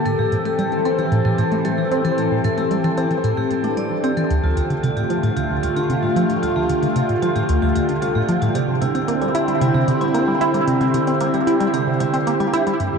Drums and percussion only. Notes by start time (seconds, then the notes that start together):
0.06 closed hi-hat
0.32 closed hi-hat, high conga
0.45 closed hi-hat
0.59 closed hi-hat
0.72 closed hi-hat, high conga
0.85 closed hi-hat
0.98 closed hi-hat
1.12 closed hi-hat, high conga
1.38 closed hi-hat
1.52 closed hi-hat, high conga
1.65 closed hi-hat
1.91 closed hi-hat, high conga
2.05 closed hi-hat
2.18 closed hi-hat
2.31 high conga
2.44 closed hi-hat
2.58 closed hi-hat
2.71 closed hi-hat, high conga
2.84 closed hi-hat
2.98 closed hi-hat
3.11 closed hi-hat, high conga
3.24 closed hi-hat
3.51 closed hi-hat, high conga
3.64 closed hi-hat
3.77 closed hi-hat
3.91 high conga
4.04 closed hi-hat
4.17 closed hi-hat
4.30 closed hi-hat
4.44 high conga
4.57 closed hi-hat
4.70 closed hi-hat
4.84 closed hi-hat, high conga
4.97 closed hi-hat
5.10 closed hi-hat
5.23 closed hi-hat, high conga
5.37 closed hi-hat
5.63 closed hi-hat, high conga
5.76 closed hi-hat
5.90 closed hi-hat
6.03 high conga
6.16 closed hi-hat
6.30 closed hi-hat
6.43 closed hi-hat, high conga
6.69 closed hi-hat
6.83 closed hi-hat, high conga
6.96 closed hi-hat
7.09 closed hi-hat
7.23 closed hi-hat, high conga
7.36 closed hi-hat
7.49 closed hi-hat
7.62 high conga
7.76 closed hi-hat
7.89 closed hi-hat
8.02 closed hi-hat, high conga
8.29 closed hi-hat
8.42 closed hi-hat, high conga
8.55 closed hi-hat
8.82 closed hi-hat, high conga
8.95 closed hi-hat
9.08 closed hi-hat
9.22 closed hi-hat, high conga
9.35 closed hi-hat
9.48 closed hi-hat
9.61 closed hi-hat, high conga
9.88 closed hi-hat
10.01 closed hi-hat, high conga
10.14 closed hi-hat
10.41 closed hi-hat, high conga
10.54 closed hi-hat
10.68 closed hi-hat
10.81 closed hi-hat, high conga
10.94 closed hi-hat
11.07 closed hi-hat
11.20 closed hi-hat, high conga
11.34 closed hi-hat
11.47 closed hi-hat
11.60 closed hi-hat, high conga
11.74 closed hi-hat
12.00 closed hi-hat, high conga
12.14 closed hi-hat
12.27 closed hi-hat
12.40 closed hi-hat, high conga
12.53 closed hi-hat
12.67 closed hi-hat
12.80 closed hi-hat
12.93 high conga